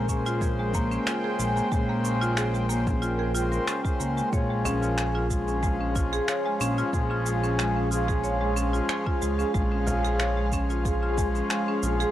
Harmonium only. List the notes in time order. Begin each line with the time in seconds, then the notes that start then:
0.07 C#3 G#3 C5
1.70 C#3 G#3
1.74 C5
2.69 C#3 G#3 C5
3.34 C#3 G#3 C5
3.84 C#3 G#3 C5
4.31 F3 G#3
4.35 C#4
5.29 F3 G#3
5.33 C#4
6.92 F3 G#3 C#4
7.89 F3 G#3 C#4
9.53 F3 G#3
9.57 C#4
10.50 F3 G#3
10.54 C#4